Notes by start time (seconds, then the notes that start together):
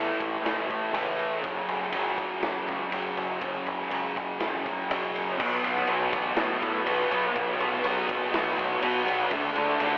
Already playing: E2 A2 E3 A3
0.20 A1, kick, ride
0.42 F#1 A2 E3 A3, ride
0.46 snare
0.66 E3 A3, kick
0.70 ride
0.92 F#1 A2 E3 A3, ride
1.19 ride
1.41 F#1 F#2 C#3 F#3, kick, ride
1.68 F#1, ride
1.81 snare
1.92 F#1 F#2 C#3 F#3, ride
2.18 kick, ride
2.41 F#1 F#2 C#3 F#3, snare, ride
2.66 C#2 C#3 F#3, kick, ride
2.91 F#1 F#2 C#3 F#3, ride
3.17 F#1, ride
3.40 F#1 F#2 C#3 F#3, kick, ride
3.66 F#1, kick, ride
3.79 snare
3.89 C#2 F#2 C#3 F#3, ride
4.16 F#1, kick, ride
4.39 E1 F#2 C#3 F#3, snare, ride
4.64 C#3 F#3, kick, ride
4.89 E1 F#2 C#3 F#3, ride
5.16 ride
5.38 B1 B2 F#3 B3, kick, crash
5.63 B1 F#3 B3, ride
5.76 snare
5.87 B1 B2 F#3 B3, ride
6.12 A1 F#3 B3, kick, ride
6.36 A2 B2 F#3 B3, snare, ride
6.60 A2 F#3 B3, kick, ride
6.84 B1 B2 F#3 B3, ride
7.10 B1 F#3 B3, ride
7.33 B1 B2 F#3 B3, kick, ride
7.58 B1 F#3 B3, ride
7.73 snare
7.82 B1 B2 F#3 B3, ride
8.07 F#1 B3, kick, ride
8.11 F#3
8.31 B1 B2 F#3 B3, snare, ride
8.56 B1 F#3 B3, kick, ride
8.80 B2 F#3 B3, ride
9.04 B1 F#3 B3, ride
9.29 D2 D3 A3 D4, kick, ride
9.54 D2 A3 D4, ride
9.68 snare
9.79 D2 D3 A3 D4, ride